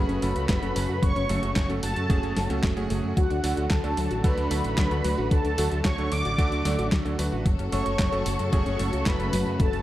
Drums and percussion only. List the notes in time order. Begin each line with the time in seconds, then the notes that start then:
0.09 closed hi-hat
0.22 open hi-hat
0.36 closed hi-hat
0.49 kick, snare, clap, closed hi-hat
0.63 closed hi-hat
0.76 open hi-hat
1.03 kick, closed hi-hat
1.16 closed hi-hat
1.29 open hi-hat
1.43 closed hi-hat
1.56 kick, snare, clap, closed hi-hat
1.70 closed hi-hat
1.83 open hi-hat
1.96 closed hi-hat
2.10 kick, closed hi-hat
2.23 closed hi-hat
2.37 snare, open hi-hat
2.50 closed hi-hat
2.63 kick, snare, clap, open hi-hat
2.77 closed hi-hat
2.90 open hi-hat
3.17 kick, closed hi-hat
3.31 closed hi-hat
3.44 open hi-hat
3.57 closed hi-hat
3.71 kick, snare, clap, closed hi-hat
3.84 closed hi-hat
3.97 open hi-hat
4.11 closed hi-hat
4.24 kick, closed hi-hat
4.38 closed hi-hat
4.51 open hi-hat
4.64 closed hi-hat
4.78 kick, snare, clap, closed hi-hat
4.91 closed hi-hat
5.04 open hi-hat
5.31 kick, closed hi-hat
5.45 closed hi-hat
5.58 open hi-hat
5.72 closed hi-hat
5.85 kick, snare, clap, closed hi-hat
5.98 closed hi-hat
6.12 open hi-hat
6.25 closed hi-hat
6.38 kick, closed hi-hat
6.52 closed hi-hat
6.65 snare, open hi-hat
6.79 closed hi-hat
6.92 kick, snare, clap, open hi-hat
7.06 closed hi-hat
7.19 open hi-hat
7.46 kick, closed hi-hat
7.59 closed hi-hat
7.72 open hi-hat
7.86 closed hi-hat
7.99 kick, snare, clap, closed hi-hat
8.13 closed hi-hat
8.26 open hi-hat
8.39 closed hi-hat
8.53 kick, closed hi-hat
8.66 closed hi-hat
8.79 open hi-hat
8.93 closed hi-hat
9.06 kick, snare, clap, closed hi-hat
9.20 closed hi-hat
9.33 open hi-hat
9.60 kick, closed hi-hat
9.73 closed hi-hat